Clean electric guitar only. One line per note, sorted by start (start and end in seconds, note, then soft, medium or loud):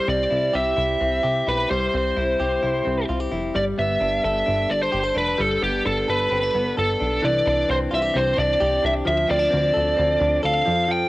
0.00 1.70 G3 medium
0.00 0.30 E4 medium
0.08 0.99 C4 medium
0.30 0.75 E4 medium
0.53 1.23 G4 medium
0.77 1.45 E4 medium
1.01 1.92 C4 soft
1.23 2.39 G4 medium
1.47 2.15 E4 medium
1.70 3.54 G3 medium
1.94 2.84 C4 medium
2.16 2.61 E4 medium
2.40 3.09 G4 medium
2.63 3.30 E4 medium
2.85 3.59 C4 medium
3.09 3.20 F4 medium
3.20 3.60 G4 medium
3.32 3.60 E4 medium
3.55 5.38 G3 medium
3.78 4.70 B3 medium
4.01 4.46 D4 medium
4.24 4.92 A4 medium
4.46 5.14 D4 medium
4.92 5.04 G4 medium
5.04 6.07 A4 soft
5.15 5.85 D4 medium
5.38 7.22 G3 medium
5.62 6.53 B3 medium
5.85 6.31 D4 medium
6.08 6.76 A4 medium
6.31 6.43 C4 medium
6.43 6.99 D4 medium
6.55 7.28 B3 medium
6.77 7.28 A4 medium
7.00 7.45 D4 medium
7.22 9.05 E3 medium
7.46 8.36 D4 medium
7.69 8.13 C4 medium
7.91 8.02 F4 medium
8.02 8.59 G4 medium
8.14 9.28 C4 medium
8.37 8.82 D4 medium
8.60 9.11 G4 medium
8.83 9.28 D4 medium
9.05 10.65 F3 medium
9.28 9.39 C4 medium
9.39 10.19 D4 soft
9.50 9.96 C4 medium
9.74 10.43 A4 medium
9.97 11.09 C4 medium
10.20 10.71 D4 medium
10.43 11.09 A4 medium
10.66 10.87 F3 medium
10.88 11.09 F3 medium